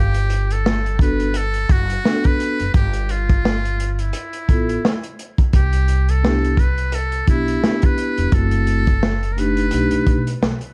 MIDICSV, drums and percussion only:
0, 0, Header, 1, 2, 480
1, 0, Start_track
1, 0, Key_signature, 1, "major"
1, 0, Tempo, 697674
1, 1884, Time_signature, 4, 2, 24, 8
1, 7386, End_track
2, 0, Start_track
2, 0, Title_t, "Drums"
2, 98, Note_on_c, 9, 42, 60
2, 167, Note_off_c, 9, 42, 0
2, 205, Note_on_c, 9, 42, 73
2, 274, Note_off_c, 9, 42, 0
2, 346, Note_on_c, 9, 42, 51
2, 415, Note_off_c, 9, 42, 0
2, 454, Note_on_c, 9, 38, 95
2, 523, Note_off_c, 9, 38, 0
2, 591, Note_on_c, 9, 42, 45
2, 660, Note_off_c, 9, 42, 0
2, 682, Note_on_c, 9, 36, 90
2, 694, Note_on_c, 9, 42, 72
2, 751, Note_off_c, 9, 36, 0
2, 763, Note_off_c, 9, 42, 0
2, 823, Note_on_c, 9, 42, 45
2, 892, Note_off_c, 9, 42, 0
2, 921, Note_on_c, 9, 42, 83
2, 990, Note_off_c, 9, 42, 0
2, 1058, Note_on_c, 9, 42, 50
2, 1126, Note_off_c, 9, 42, 0
2, 1165, Note_on_c, 9, 42, 63
2, 1166, Note_on_c, 9, 36, 86
2, 1234, Note_off_c, 9, 42, 0
2, 1235, Note_off_c, 9, 36, 0
2, 1306, Note_on_c, 9, 42, 55
2, 1374, Note_off_c, 9, 42, 0
2, 1413, Note_on_c, 9, 38, 86
2, 1482, Note_off_c, 9, 38, 0
2, 1541, Note_on_c, 9, 42, 47
2, 1549, Note_on_c, 9, 36, 86
2, 1609, Note_off_c, 9, 42, 0
2, 1617, Note_off_c, 9, 36, 0
2, 1651, Note_on_c, 9, 42, 65
2, 1720, Note_off_c, 9, 42, 0
2, 1785, Note_on_c, 9, 42, 52
2, 1854, Note_off_c, 9, 42, 0
2, 1884, Note_on_c, 9, 42, 75
2, 1887, Note_on_c, 9, 36, 101
2, 1953, Note_off_c, 9, 42, 0
2, 1956, Note_off_c, 9, 36, 0
2, 2018, Note_on_c, 9, 42, 60
2, 2087, Note_off_c, 9, 42, 0
2, 2126, Note_on_c, 9, 42, 70
2, 2195, Note_off_c, 9, 42, 0
2, 2266, Note_on_c, 9, 42, 48
2, 2267, Note_on_c, 9, 36, 81
2, 2335, Note_off_c, 9, 42, 0
2, 2336, Note_off_c, 9, 36, 0
2, 2376, Note_on_c, 9, 38, 101
2, 2445, Note_off_c, 9, 38, 0
2, 2513, Note_on_c, 9, 42, 45
2, 2582, Note_off_c, 9, 42, 0
2, 2613, Note_on_c, 9, 42, 69
2, 2682, Note_off_c, 9, 42, 0
2, 2743, Note_on_c, 9, 42, 48
2, 2812, Note_off_c, 9, 42, 0
2, 2841, Note_on_c, 9, 42, 85
2, 2910, Note_off_c, 9, 42, 0
2, 2979, Note_on_c, 9, 42, 54
2, 3048, Note_off_c, 9, 42, 0
2, 3087, Note_on_c, 9, 36, 81
2, 3088, Note_on_c, 9, 42, 59
2, 3156, Note_off_c, 9, 36, 0
2, 3157, Note_off_c, 9, 42, 0
2, 3228, Note_on_c, 9, 42, 53
2, 3296, Note_off_c, 9, 42, 0
2, 3336, Note_on_c, 9, 38, 99
2, 3405, Note_off_c, 9, 38, 0
2, 3463, Note_on_c, 9, 42, 53
2, 3532, Note_off_c, 9, 42, 0
2, 3572, Note_on_c, 9, 42, 65
2, 3640, Note_off_c, 9, 42, 0
2, 3704, Note_on_c, 9, 36, 80
2, 3706, Note_on_c, 9, 42, 45
2, 3773, Note_off_c, 9, 36, 0
2, 3775, Note_off_c, 9, 42, 0
2, 3806, Note_on_c, 9, 42, 83
2, 3808, Note_on_c, 9, 36, 100
2, 3874, Note_off_c, 9, 42, 0
2, 3877, Note_off_c, 9, 36, 0
2, 3940, Note_on_c, 9, 42, 57
2, 4009, Note_off_c, 9, 42, 0
2, 4046, Note_on_c, 9, 42, 67
2, 4114, Note_off_c, 9, 42, 0
2, 4186, Note_on_c, 9, 42, 50
2, 4255, Note_off_c, 9, 42, 0
2, 4297, Note_on_c, 9, 38, 107
2, 4366, Note_off_c, 9, 38, 0
2, 4433, Note_on_c, 9, 42, 47
2, 4502, Note_off_c, 9, 42, 0
2, 4522, Note_on_c, 9, 36, 92
2, 4533, Note_on_c, 9, 42, 69
2, 4591, Note_off_c, 9, 36, 0
2, 4602, Note_off_c, 9, 42, 0
2, 4662, Note_on_c, 9, 42, 48
2, 4731, Note_off_c, 9, 42, 0
2, 4762, Note_on_c, 9, 42, 88
2, 4830, Note_off_c, 9, 42, 0
2, 4898, Note_on_c, 9, 42, 46
2, 4967, Note_off_c, 9, 42, 0
2, 5004, Note_on_c, 9, 42, 68
2, 5006, Note_on_c, 9, 36, 77
2, 5073, Note_off_c, 9, 42, 0
2, 5075, Note_off_c, 9, 36, 0
2, 5146, Note_on_c, 9, 42, 50
2, 5215, Note_off_c, 9, 42, 0
2, 5254, Note_on_c, 9, 38, 90
2, 5323, Note_off_c, 9, 38, 0
2, 5379, Note_on_c, 9, 42, 50
2, 5388, Note_on_c, 9, 36, 88
2, 5448, Note_off_c, 9, 42, 0
2, 5457, Note_off_c, 9, 36, 0
2, 5488, Note_on_c, 9, 42, 62
2, 5557, Note_off_c, 9, 42, 0
2, 5624, Note_on_c, 9, 42, 50
2, 5693, Note_off_c, 9, 42, 0
2, 5723, Note_on_c, 9, 42, 78
2, 5726, Note_on_c, 9, 36, 108
2, 5792, Note_off_c, 9, 42, 0
2, 5795, Note_off_c, 9, 36, 0
2, 5856, Note_on_c, 9, 42, 61
2, 5925, Note_off_c, 9, 42, 0
2, 5964, Note_on_c, 9, 42, 68
2, 6033, Note_off_c, 9, 42, 0
2, 6102, Note_on_c, 9, 42, 49
2, 6105, Note_on_c, 9, 36, 84
2, 6171, Note_off_c, 9, 42, 0
2, 6174, Note_off_c, 9, 36, 0
2, 6212, Note_on_c, 9, 38, 110
2, 6281, Note_off_c, 9, 38, 0
2, 6349, Note_on_c, 9, 42, 44
2, 6417, Note_off_c, 9, 42, 0
2, 6452, Note_on_c, 9, 42, 72
2, 6521, Note_off_c, 9, 42, 0
2, 6582, Note_on_c, 9, 42, 52
2, 6651, Note_off_c, 9, 42, 0
2, 6679, Note_on_c, 9, 42, 80
2, 6748, Note_off_c, 9, 42, 0
2, 6817, Note_on_c, 9, 42, 53
2, 6885, Note_off_c, 9, 42, 0
2, 6924, Note_on_c, 9, 42, 61
2, 6925, Note_on_c, 9, 36, 76
2, 6993, Note_off_c, 9, 42, 0
2, 6994, Note_off_c, 9, 36, 0
2, 7065, Note_on_c, 9, 42, 56
2, 7134, Note_off_c, 9, 42, 0
2, 7173, Note_on_c, 9, 38, 97
2, 7242, Note_off_c, 9, 38, 0
2, 7299, Note_on_c, 9, 42, 46
2, 7368, Note_off_c, 9, 42, 0
2, 7386, End_track
0, 0, End_of_file